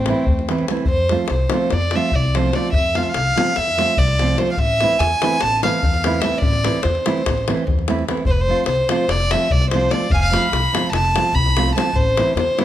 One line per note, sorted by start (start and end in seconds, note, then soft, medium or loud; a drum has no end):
0.00 0.11 A1 medium
0.00 0.68 A3 medium
0.00 0.65 C4 medium
0.06 0.24 E3 medium
0.06 0.24 A3 medium
0.06 0.24 C4 medium
0.06 davul high medium
0.10 0.24 E4 medium
0.26 0.64 E2 medium
0.26 davul low medium
0.39 davul high soft
0.49 0.64 E3 medium
0.49 0.65 A3 medium
0.49 0.65 C4 medium
0.49 0.65 E4 medium
0.49 davul high medium
0.58 davul high soft
0.68 0.84 E3 medium
0.68 0.84 A3 medium
0.68 0.84 C4 medium
0.68 0.85 E4 medium
0.68 davul high medium
0.77 davul high soft
0.85 1.14 F2 medium
0.85 1.27 C5 medium
0.85 davul low medium
1.09 1.26 F3 medium
1.09 1.26 A3 medium
1.09 1.26 C4 soft
1.09 1.26 F4 medium
1.09 davul high medium
1.28 1.43 C2 medium
1.28 1.74 C5 medium
1.28 davul high medium
1.50 1.67 F3 medium
1.50 1.67 A3 medium
1.50 1.68 C4 medium
1.50 davul high medium
1.54 1.68 F4 medium
1.70 1.97 F2 medium
1.70 1.97 D5 medium
1.70 davul high medium
1.81 davul high soft
1.91 2.09 F3 medium
1.91 davul high medium
1.95 2.09 A3 medium
1.95 2.10 C4 medium
1.95 2.10 F4 medium
1.95 2.17 E5 medium
2.12 2.49 C2 medium
2.12 davul low medium
2.16 2.38 D5 medium
2.24 davul high soft
2.35 2.50 F3 medium
2.35 2.50 A3 medium
2.35 2.51 C4 medium
2.35 2.51 F4 medium
2.35 2.56 C5 medium
2.35 davul high medium
2.45 davul high soft
2.53 2.69 F3 medium
2.53 2.69 A3 medium
2.53 2.70 C4 medium
2.53 2.70 F4 medium
2.53 2.73 D5 medium
2.53 davul high medium
2.72 2.99 F2 loud
2.72 2.98 E5 medium
2.72 davul low medium
2.95 3.11 F3 medium
2.95 3.11 A3 soft
2.95 3.12 C4 medium
2.95 3.12 F4 medium
2.95 3.05 F5 medium
2.95 davul high medium
3.03 3.10 E5 medium
3.09 3.58 F5 loud
3.14 3.29 C2 medium
3.14 davul high medium
3.36 3.51 F3 medium
3.36 3.52 A3 medium
3.36 3.52 C4 medium
3.36 3.52 F4 medium
3.36 davul high medium
3.56 3.82 F2 medium
3.56 4.00 E5 loud
3.56 davul high medium
3.68 davul high soft
3.77 3.93 F3 medium
3.77 3.94 A3 medium
3.77 3.94 C4 medium
3.77 3.94 F4 medium
3.77 davul high medium
3.97 4.34 C2 loud
3.97 4.40 D5 medium
3.97 davul low medium
4.08 davul high soft
4.19 4.35 F3 medium
4.19 4.35 A3 medium
4.19 4.36 C4 medium
4.19 4.36 F4 medium
4.19 davul high medium
4.28 davul high soft
4.38 4.54 F3 medium
4.38 4.54 A3 medium
4.38 4.54 C4 soft
4.38 4.55 F4 medium
4.38 4.51 C5 medium
4.38 davul high medium
4.52 4.60 F5 medium
4.57 4.83 A1 loud
4.57 5.01 E5 loud
4.57 davul low medium
4.80 4.95 E3 soft
4.80 4.96 A3 soft
4.80 4.96 C4 medium
4.80 4.96 E4 medium
4.80 davul high medium
5.00 5.13 E2 medium
5.00 5.43 G#5 loud
5.00 davul high medium
5.22 5.37 E3 medium
5.22 5.37 A3 medium
5.22 5.37 C4 medium
5.22 5.38 E4 medium
5.22 davul high medium
5.41 5.67 A1 medium
5.41 5.63 A5 loud
5.41 davul high medium
5.52 davul high soft
5.63 5.78 E3 medium
5.63 5.79 A3 soft
5.63 5.79 C4 medium
5.63 5.79 E4 medium
5.63 6.22 F5 medium
5.63 davul high medium
5.83 6.19 E2 medium
5.83 davul low loud
5.94 davul high soft
6.04 6.18 E3 medium
6.04 6.19 A3 medium
6.04 6.19 C4 soft
6.04 6.19 E4 medium
6.04 davul high medium
6.14 davul high soft
6.21 6.37 E3 soft
6.21 6.37 A3 soft
6.21 6.38 C4 soft
6.21 6.38 E4 medium
6.21 6.41 E5 medium
6.21 davul high medium
6.41 6.67 A1 medium
6.41 6.84 D5 loud
6.41 davul low loud
6.53 davul high soft
6.64 6.79 E3 medium
6.64 6.79 A3 soft
6.64 6.79 C4 soft
6.64 6.80 E4 medium
6.64 davul high medium
6.75 davul high soft
6.83 6.97 E2 medium
6.83 7.66 C5 medium
6.83 davul high medium
6.95 davul high soft
7.06 7.21 E3 medium
7.06 7.21 A3 medium
7.06 7.21 C4 medium
7.06 7.21 E4 medium
7.06 davul high medium
7.18 davul high soft
7.26 7.51 A1 medium
7.26 davul high medium
7.26 davul low medium
7.38 davul high soft
7.48 7.62 E3 medium
7.48 7.62 A3 medium
7.48 7.63 C4 medium
7.48 7.63 E4 medium
7.48 davul high medium
7.57 davul high soft
7.67 8.02 E2 medium
7.67 davul low medium
7.79 davul high soft
7.88 8.02 E3 medium
7.88 8.03 A3 medium
7.88 8.03 C4 medium
7.88 8.03 E4 medium
7.88 davul high medium
7.99 davul high soft
8.08 8.22 E3 medium
8.08 8.22 A3 medium
8.08 8.22 C4 medium
8.08 8.23 E4 medium
8.08 davul high medium
8.17 davul high soft
8.25 8.50 F1 medium
8.25 8.33 C5 medium
8.25 davul low medium
8.31 8.42 B4 medium
8.41 8.67 C5 loud
8.48 8.63 F3 soft
8.48 8.63 A3 soft
8.48 8.64 C4 soft
8.48 8.64 F4 medium
8.66 8.80 C2 medium
8.66 9.11 C5 medium
8.66 davul high medium
8.89 9.04 F3 medium
8.89 9.04 A3 medium
8.89 9.04 C4 medium
8.89 9.05 F4 medium
8.89 davul high medium
9.08 9.33 F1 medium
9.08 9.33 D5 loud
9.08 davul high medium
9.20 davul high soft
9.31 9.46 F3 medium
9.31 9.46 A3 soft
9.31 9.47 C4 medium
9.31 9.47 F4 medium
9.31 9.53 E5 medium
9.31 davul high medium
9.50 9.86 C2 loud
9.50 9.70 D5 medium
9.50 davul low medium
9.61 davul high soft
9.71 9.87 F3 medium
9.71 9.87 A3 soft
9.71 9.93 C5 medium
9.71 davul high medium
9.75 9.88 C4 medium
9.75 9.88 F4 medium
9.81 davul high soft
9.91 10.05 F3 medium
9.91 10.06 A3 soft
9.91 10.06 C4 soft
9.91 10.07 F4 medium
9.91 10.13 D5 medium
9.91 davul high medium
10.10 10.35 F1 loud
10.10 10.15 F5 loud
10.10 davul low medium
10.14 10.23 G#5 medium
10.22 10.35 F5 loud
10.31 10.46 F3 medium
10.31 10.47 A3 medium
10.31 10.47 C4 soft
10.31 10.47 F4 medium
10.31 10.92 B5 medium
10.31 davul high medium
10.52 10.65 C2 medium
10.52 davul high medium
10.73 10.88 F3 medium
10.73 10.88 A3 medium
10.73 10.89 C4 medium
10.73 10.89 F4 medium
10.73 davul high medium
10.92 11.17 F1 medium
10.92 11.36 A5 loud
10.92 davul high medium
11.05 davul high soft
11.16 11.30 F3 medium
11.16 11.31 A3 soft
11.16 11.30 C4 medium
11.16 11.31 F4 medium
11.16 davul high medium
11.33 11.69 C2 loud
11.33 11.75 B5 loud
11.33 davul low medium
11.46 davul high soft
11.56 11.70 F3 medium
11.56 11.71 A3 medium
11.56 11.71 C4 medium
11.56 11.71 F4 medium
11.56 davul high medium
11.68 davul high soft
11.75 11.90 F3 medium
11.75 11.90 A3 medium
11.75 11.90 C4 medium
11.75 11.90 F4 medium
11.75 11.97 A5 medium
11.75 davul high medium
11.93 12.18 A1 medium
11.93 12.36 C5 loud
11.93 davul low medium
12.17 12.32 E3 medium
12.17 12.32 A3 medium
12.17 12.32 C4 medium
12.17 12.32 E4 medium
12.17 davul high medium
12.35 12.49 E2 medium
12.35 12.65 C5 medium
12.35 davul high medium
12.58 12.65 E3 medium
12.58 12.65 A3 medium
12.58 12.65 C4 medium
12.58 12.65 E4 medium
12.58 davul high medium